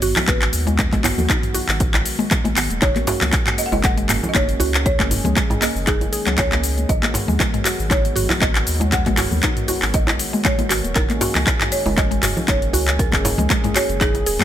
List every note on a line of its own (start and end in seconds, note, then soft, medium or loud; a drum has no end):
0.00 0.14 G#1 loud
0.00 6.85 D#3 medium
0.00 2.78 F#3 medium
0.00 10.91 G#3 medium
0.00 2.78 B3 medium
0.00 2.78 F#4 medium
0.00 0.16 F#4 loud
0.00 0.25 D#5 loud
0.00 mid tom medium
0.00 open hi-hat medium
0.00 shaker medium
0.16 clap loud
0.16 djembe tone medium
0.16 low conga loud
0.16 shaker soft
0.28 0.49 G#1 loud
0.28 0.65 B4 medium
0.28 kick loud
0.28 clap medium
0.28 closed hi-hat medium
0.28 high conga loud
0.28 shaker medium
0.42 clap medium
0.42 closed hi-hat soft
0.42 shaker soft
0.53 0.89 D#2 medium
0.53 open hi-hat medium
0.53 shaker medium
0.67 0.77 G#3 medium
0.67 closed hi-hat soft
0.67 djembe tone medium
0.67 shaker soft
0.79 0.86 G#3 medium
0.79 kick loud
0.79 clap medium
0.79 closed hi-hat medium
0.79 shaker medium
0.92 1.13 G#1 loud
0.92 1.03 G#3 medium
0.92 kick medium
0.92 clap soft
0.92 closed hi-hat soft
0.92 high conga loud
0.92 shaker soft
1.04 1.17 B3 medium
1.04 clap loud
1.04 mid tom medium
1.04 open hi-hat medium
1.04 djembe tone loud
1.04 shaker loud
1.18 1.28 D#2 medium
1.18 high conga medium
1.18 low conga loud
1.18 shaker soft
1.29 1.37 D#4 medium
1.29 kick loud
1.29 clap loud
1.29 closed hi-hat medium
1.29 shaker medium
1.43 closed hi-hat soft
1.43 mid tom medium
1.43 shaker soft
1.54 1.68 F#4 loud
1.54 open hi-hat medium
1.54 djembe tone medium
1.54 shaker medium
1.68 2.02 G#1 loud
1.68 clap medium
1.68 shaker soft
1.80 kick loud
1.80 closed hi-hat medium
1.80 shaker medium
1.94 clap loud
1.94 closed hi-hat soft
1.94 djembe tone loud
1.94 shaker soft
2.06 open hi-hat medium
2.06 shaker loud
2.19 2.30 G#3 medium
2.19 high conga loud
2.19 shaker soft
2.31 2.39 G#3 medium
2.31 kick loud
2.31 clap medium
2.31 closed hi-hat medium
2.31 low conga loud
2.31 shaker medium
2.44 2.56 G#3 medium
2.44 closed hi-hat soft
2.44 djembe tone medium
2.44 high conga loud
2.44 shaker soft
2.57 2.68 G#1 medium
2.57 2.69 B3 medium
2.57 clap loud
2.57 open hi-hat medium
2.57 shaker loud
2.70 2.80 D#1 loud
2.70 closed hi-hat soft
2.70 high conga medium
2.70 shaker soft
2.82 2.94 F#1 loud
2.82 6.85 A#3 medium
2.82 6.85 C#4 medium
2.82 2.90 D#4 medium
2.82 4.84 F#4 medium
2.82 3.61 C#5 loud
2.82 kick loud
2.82 clap medium
2.82 closed hi-hat medium
2.82 djembe tone loud
2.82 shaker medium
2.96 clap soft
2.96 closed hi-hat soft
2.96 high conga loud
2.96 shaker soft
3.07 3.21 F#4 loud
3.07 mid tom medium
3.07 open hi-hat medium
3.07 djembe slap medium
3.07 shaker medium
3.21 3.31 C#2 loud
3.21 clap medium
3.21 high conga loud
3.21 low conga loud
3.21 shaker soft
3.32 kick loud
3.32 clap medium
3.32 closed hi-hat medium
3.32 djembe tone medium
3.32 shaker medium
3.47 clap loud
3.47 closed hi-hat soft
3.47 mid tom medium
3.47 shaker soft
3.58 3.62 D#5 loud
3.58 open hi-hat medium
3.58 shaker loud
3.66 3.73 F#5 medium
3.72 4.06 F#1 loud
3.72 3.82 G#3 medium
3.72 3.83 D#5 loud
3.72 djembe tone medium
3.72 shaker soft
3.84 3.91 G#3 medium
3.84 4.30 F#5 loud
3.84 kick loud
3.84 clap medium
3.84 closed hi-hat medium
3.84 high conga medium
3.84 shaker medium
3.97 4.09 G#3 medium
3.97 closed hi-hat soft
3.97 shaker soft
4.09 4.21 F#1 loud
4.09 4.22 A#3 medium
4.09 clap loud
4.09 mid tom medium
4.09 open hi-hat medium
4.09 shaker loud
4.23 djembe tone medium
4.23 low conga loud
4.23 shaker soft
4.29 4.35 D#5 medium
4.34 4.56 F#1 loud
4.34 4.42 D#4 medium
4.34 4.72 C#5 loud
4.34 kick loud
4.34 clap loud
4.34 closed hi-hat medium
4.34 high conga loud
4.34 shaker medium
4.49 closed hi-hat soft
4.49 shaker soft
4.60 4.96 C#2 medium
4.60 4.73 F#4 loud
4.60 open hi-hat medium
4.60 djembe tone medium
4.60 shaker loud
4.74 clap loud
4.74 closed hi-hat soft
4.74 shaker soft
4.85 6.87 G#4 medium
4.85 5.64 C#5 loud
4.85 kick loud
4.85 closed hi-hat medium
4.85 shaker medium
4.99 5.20 F#1 medium
4.99 kick medium
4.99 clap medium
4.99 closed hi-hat soft
4.99 high conga loud
4.99 shaker soft
5.11 mid tom medium
5.11 open hi-hat medium
5.11 djembe tone medium
5.11 shaker loud
5.25 5.34 C#2 loud
5.25 5.35 G#3 medium
5.25 closed hi-hat soft
5.25 high conga loud
5.25 low conga loud
5.25 shaker soft
5.36 5.44 G#3 medium
5.36 kick loud
5.36 clap loud
5.36 closed hi-hat medium
5.36 shaker medium
5.50 5.61 G#3 medium
5.50 closed hi-hat soft
5.50 mid tom medium
5.50 djembe tone medium
5.50 shaker soft
5.62 5.74 A#3 medium
5.62 5.74 D#5 loud
5.62 clap medium
5.62 open hi-hat medium
5.62 shaker loud
5.76 6.09 F#1 loud
5.76 shaker soft
5.87 5.95 D#4 medium
5.87 6.35 G#4 medium
5.87 kick loud
5.87 clap medium
5.87 closed hi-hat medium
5.87 shaker medium
6.01 closed hi-hat soft
6.01 djembe tone medium
6.01 shaker soft
6.13 6.20 G#4 medium
6.13 open hi-hat medium
6.13 shaker medium
6.26 6.86 C#2 medium
6.26 6.37 F#3 loud
6.26 clap loud
6.26 closed hi-hat soft
6.26 high conga loud
6.26 shaker soft
6.38 6.85 C#5 loud
6.38 kick loud
6.38 clap loud
6.38 closed hi-hat medium
6.38 djembe tone loud
6.38 low conga medium
6.38 shaker medium
6.52 6.63 A#3 medium
6.52 clap medium
6.52 closed hi-hat soft
6.52 high conga loud
6.52 shaker soft
6.64 open hi-hat medium
6.64 shaker loud
6.78 closed hi-hat soft
6.78 high conga medium
6.78 shaker soft
6.89 7.01 G#1 loud
6.89 14.44 D#3 medium
6.89 10.92 F#3 medium
6.89 10.92 B3 medium
6.89 12.95 F#4 medium
6.89 7.94 D#5 loud
6.89 kick loud
6.89 closed hi-hat medium
6.89 shaker medium
7.03 clap medium
7.03 closed hi-hat soft
7.03 djembe tone medium
7.03 high conga loud
7.03 shaker soft
7.14 mid tom medium
7.14 open hi-hat medium
7.14 djembe slap medium
7.14 shaker loud
7.28 7.38 D#2 loud
7.28 7.39 G#3 medium
7.28 high conga medium
7.28 low conga loud
7.28 shaker soft
7.40 7.47 G#3 medium
7.40 kick loud
7.40 clap loud
7.40 closed hi-hat medium
7.40 djembe tone medium
7.40 shaker medium
7.54 7.65 G#3 medium
7.54 closed hi-hat soft
7.54 mid tom medium
7.54 shaker soft
7.65 7.73 F#4 medium
7.65 clap medium
7.65 open hi-hat medium
7.65 shaker medium
7.79 8.13 G#1 loud
7.79 shaker soft
7.90 7.98 D#4 medium
7.90 8.43 C#5 loud
7.90 kick loud
7.90 clap medium
7.90 closed hi-hat medium
7.90 high conga medium
7.90 djembe tone medium
7.90 shaker medium
8.05 closed hi-hat soft
8.05 shaker soft
8.16 8.28 G#1 loud
8.16 8.29 F#4 loud
8.16 mid tom medium
8.16 open hi-hat medium
8.16 shaker medium
8.30 clap medium
8.30 djembe tone medium
8.30 low conga loud
8.30 shaker soft
8.40 8.63 G#1 loud
8.40 8.89 D#5 loud
8.40 kick loud
8.40 clap loud
8.40 closed hi-hat medium
8.40 high conga loud
8.40 shaker medium
8.55 clap medium
8.55 closed hi-hat soft
8.55 shaker soft
8.67 9.03 D#2 medium
8.67 open hi-hat medium
8.67 shaker loud
8.80 8.91 G#3 medium
8.80 closed hi-hat soft
8.80 djembe tone medium
8.80 shaker soft
8.92 9.00 G#3 medium
8.92 9.97 F#5 loud
8.92 kick loud
8.92 clap medium
8.92 closed hi-hat medium
8.92 shaker medium
9.06 9.27 G#1 loud
9.06 9.17 G#3 medium
9.06 kick medium
9.06 clap soft
9.06 closed hi-hat soft
9.06 high conga loud
9.06 shaker soft
9.17 9.25 F#4 medium
9.17 clap medium
9.17 mid tom medium
9.17 open hi-hat medium
9.17 djembe tone medium
9.17 shaker medium
9.31 9.41 D#2 loud
9.31 high conga medium
9.31 low conga loud
9.31 shaker soft
9.43 9.51 D#4 medium
9.43 kick loud
9.43 clap loud
9.43 closed hi-hat medium
9.43 shaker medium
9.57 closed hi-hat soft
9.57 mid tom medium
9.57 shaker soft
9.68 9.82 F#4 loud
9.68 open hi-hat medium
9.68 djembe tone medium
9.68 shaker medium
9.82 10.16 G#1 loud
9.82 clap medium
9.82 shaker soft
9.94 10.46 D#5 loud
9.94 kick loud
9.94 closed hi-hat medium
9.94 shaker medium
10.07 clap medium
10.07 closed hi-hat soft
10.07 djembe tone loud
10.07 shaker soft
10.19 open hi-hat medium
10.19 shaker medium
10.33 10.44 G#3 medium
10.33 high conga medium
10.33 shaker soft
10.45 10.52 G#3 medium
10.45 10.81 C#5 medium
10.45 kick loud
10.45 clap loud
10.45 closed hi-hat medium
10.45 low conga loud
10.45 shaker soft
10.59 10.70 G#3 medium
10.59 closed hi-hat soft
10.59 high conga loud
10.59 djembe tone medium
10.59 shaker soft
10.70 10.82 G#1 medium
10.70 10.78 F#4 medium
10.70 clap medium
10.70 open hi-hat medium
10.70 shaker loud
10.84 10.94 D#1 medium
10.84 closed hi-hat soft
10.84 high conga medium
10.84 shaker soft
10.95 11.07 F#1 loud
10.95 14.44 G#3 medium
10.95 14.44 A#3 medium
10.95 14.44 C#4 medium
10.95 11.03 D#4 medium
10.95 11.68 A#4 medium
10.95 kick loud
10.95 clap medium
10.95 closed hi-hat medium
10.95 djembe tone medium
10.95 shaker medium
11.10 clap soft
11.10 closed hi-hat soft
11.10 high conga loud
11.10 shaker soft
11.21 11.34 F#4 loud
11.21 mid tom medium
11.21 open hi-hat loud
11.21 djembe slap medium
11.21 shaker medium
11.35 11.45 C#2 medium
11.35 clap medium
11.35 high conga loud
11.35 low conga loud
11.35 shaker soft
11.47 kick loud
11.47 clap loud
11.47 closed hi-hat medium
11.47 djembe tone medium
11.47 shaker soft
11.61 clap medium
11.61 closed hi-hat soft
11.61 mid tom medium
11.61 shaker soft
11.72 11.98 C#5 medium
11.72 open hi-hat medium
11.72 shaker medium
11.86 12.20 F#1 loud
11.86 11.96 G#3 medium
11.86 djembe tone medium
11.86 shaker soft
11.97 12.05 G#3 medium
11.97 12.50 D#5 loud
11.97 kick loud
11.97 clap medium
11.97 closed hi-hat medium
11.97 high conga medium
11.97 shaker soft
12.11 12.22 G#3 medium
12.11 closed hi-hat soft
12.11 shaker soft
12.23 12.35 F#1 loud
12.23 12.30 F#4 medium
12.23 clap medium
12.23 mid tom medium
12.23 open hi-hat loud
12.23 shaker medium
12.37 djembe tone medium
12.37 low conga loud
12.37 shaker soft
12.48 12.70 F#1 loud
12.48 12.56 D#4 medium
12.48 12.85 C#5 medium
12.48 kick loud
12.48 clap loud
12.48 closed hi-hat medium
12.48 high conga loud
12.48 shaker medium
12.62 closed hi-hat soft
12.62 shaker soft
12.73 13.09 C#2 medium
12.73 12.87 F#4 loud
12.73 open hi-hat medium
12.73 djembe tone medium
12.73 shaker medium
12.88 clap medium
12.88 closed hi-hat soft
12.88 shaker soft
12.99 14.44 G#4 medium
12.99 13.47 A#4 medium
12.99 kick loud
12.99 closed hi-hat medium
12.99 shaker medium
13.12 13.34 F#1 medium
13.12 kick medium
13.12 clap medium
13.12 closed hi-hat soft
13.12 high conga medium
13.12 shaker soft
13.25 mid tom medium
13.25 open hi-hat loud
13.25 djembe slap medium
13.25 djembe tone medium
13.25 shaker medium
13.38 13.48 C#2 medium
13.38 13.49 G#3 medium
13.38 closed hi-hat soft
13.38 high conga medium
13.38 low conga loud
13.38 shaker soft
13.50 13.57 G#3 medium
13.50 kick loud
13.50 clap loud
13.50 closed hi-hat medium
13.50 shaker soft
13.64 13.75 G#3 medium
13.64 closed hi-hat soft
13.64 mid tom medium
13.64 djembe tone medium
13.64 shaker soft
13.75 13.83 F#4 medium
13.75 14.02 C#5 loud
13.75 clap loud
13.75 open hi-hat medium
13.75 shaker medium
13.89 14.23 F#1 loud
13.89 closed hi-hat soft
13.89 shaker soft
14.01 14.08 D#4 medium
14.01 14.44 G#4 loud
14.01 kick loud
14.01 clap medium
14.01 closed hi-hat medium
14.01 shaker medium
14.14 closed hi-hat soft
14.14 djembe tone medium
14.14 shaker soft
14.26 14.38 D#1 medium
14.26 14.39 G#4 loud
14.26 open hi-hat medium
14.26 shaker medium
14.39 14.44 F#2 loud
14.39 14.44 F#3 medium
14.39 clap loud
14.39 closed hi-hat soft
14.39 high conga loud
14.39 shaker soft